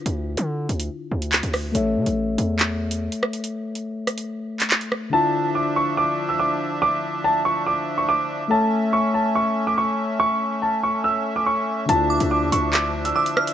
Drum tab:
HH |x--x--xx---xxxo-|x--x--x-x--x-x-x|x--x--xx---xxx--|----------------|
CP |------------x---|--------x-------|-----------xx---|----------------|
SD |--------------r-|--------------r-|------r-------r-|----------------|

HH |----------------|----------------|----------------|x--x--x-x--x-x-x|
CP |----------------|----------------|----------------|--------x-------|
SD |----------------|----------------|----------------|--------------r-|